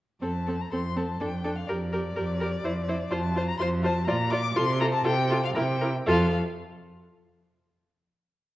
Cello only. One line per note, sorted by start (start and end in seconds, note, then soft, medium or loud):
0.22 0.66 F2 soft
0.71 1.15 F2 soft
1.20 1.63 F2 soft
1.68 2.10 F2 soft
2.16 2.58 F2 soft
2.64 3.05 F2 soft
3.11 3.53 F2 medium
3.60 4.02 F2 medium
4.08 4.51 A#2 medium
4.57 5.00 C3 medium
5.05 5.50 C3 medium
5.56 6.02 C3 medium
6.07 6.36 F2 medium